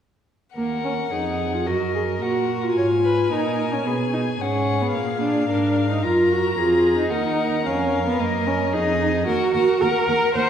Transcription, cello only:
0.56 D#2
1.12 F2
1.67 F#2
2.22 A#2
2.77 G#2
3.31 A#2
3.86 B2
4.40 G#2
4.95 A#2
5.48 G#2
6.03 F#2
6.57 F2
7.11 D#2
7.66 F2
8.20 F#2
8.73 F2
9.27 D#2
9.54 D#2
9.82 D#2
10.08 D#2
10.35 D#2

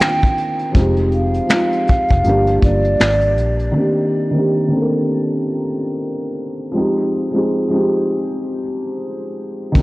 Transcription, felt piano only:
Already playing: D#3 A#3 C4 D4 F4 A#4
0.72 F3 G#3 C4
0.77 D#4 G4
1.47 F3 G#3 C4
1.52 D#4 F4
2.22 F3 G3 A#3
2.27 D4 G4
2.59 F3 G3 A#3
2.65 D4 G4
3.72 D#3 A#3 C4
3.77 D4 G4
4.31 D#3 A#3 C4
4.36 D4 G4
4.68 D#3 A#3 C4
4.74 D4 A4
4.82 A#4
6.72 F3 G#3 C4
6.77 D#4 G4
7.31 F3 G#3 C4
7.36 D#4 G#4
7.68 F3 G#3 C4
7.74 D#4 G4
9.72 D#3 A#3 C4
9.77 D4 G4

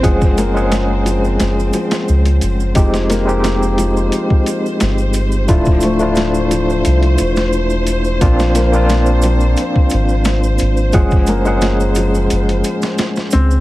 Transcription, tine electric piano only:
0.03 G#3 C#4 G#4 F#5
0.54 G#3 C#4 G#4 F#5
2.75 G#3 C4 D#4 G4
3.26 G#3 C4 D#4 G4
5.48 A3 D4 E4 F4
5.99 A3 D4 E4 F4
8.21 A#3 C4 D4 F4
8.72 A#3 C4 D4 F4
10.93 G#3 C#4 G#4 F#5
11.45 G#3 C#4 G#4 F#5

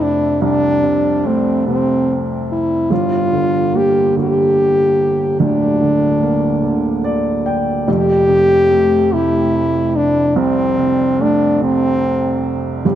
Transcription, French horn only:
0.02 D4
0.43 D4
1.26 C4
1.69 C4
2.52 E4
2.92 F4
3.76 G4
4.18 G4
5.41 D4
7.89 G4
9.14 E4
9.96 D4
10.38 C4
11.22 D4
11.64 C4
12.87 G4

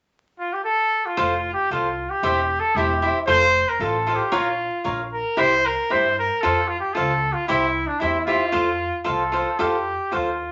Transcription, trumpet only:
0.39 F4
0.53 G4
0.64 A4
1.06 F4
1.54 G4
1.72 F4
2.10 G4
2.60 A4
2.76 G4
3.27 C5
3.69 A#4
3.81 A4
4.16 G4
4.34 F4
5.13 A#4
5.39 C5
5.66 A#4
5.92 C5
6.19 A#4
6.41 A4
6.68 F4
6.80 G4
6.94 A4
7.33 F4
7.47 E4
7.87 D4
8.00 E4
8.25 F4
9.08 A4
9.59 G4
10.15 F4

